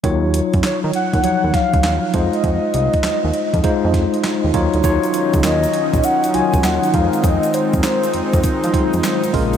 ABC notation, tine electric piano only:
X:1
M:4/4
L:1/8
Q:"Swing 16ths" 1/4=100
K:Ebdor
V:1 name="Tine electric piano"
[G,EFd]3 z [F,G,Ed]3 [A,EFc]- | [A,EFc]2 z2 [A,EFc]3 [G,EFd] | [G,EFd]3 z2 [G,EFd] z [A,EFc]- | [A,EFc]2 z3 [G,A,EFc] z [A,DFB] |]